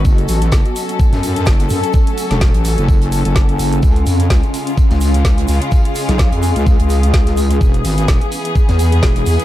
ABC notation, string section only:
X:1
M:4/4
L:1/8
Q:"Swing 16ths" 1/4=127
K:F#dor
V:1 name="String section"
[F,CA]8- | [F,CA]8 | [C,G,^E]8- | [C,G,^E]8 |
[E,B,G]8 |]